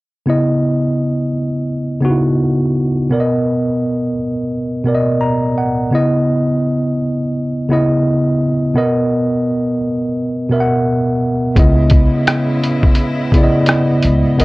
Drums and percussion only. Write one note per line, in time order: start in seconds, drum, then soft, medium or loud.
11.56 kick loud
11.56 closed hi-hat medium
11.90 kick medium
11.90 closed hi-hat medium
12.27 cross-stick loud
12.27 closed hi-hat medium
12.64 closed hi-hat medium
12.83 kick medium
12.95 closed hi-hat medium
13.32 kick medium
13.32 closed hi-hat medium
13.66 cross-stick loud
13.66 closed hi-hat medium
14.03 closed hi-hat medium
14.40 closed hi-hat medium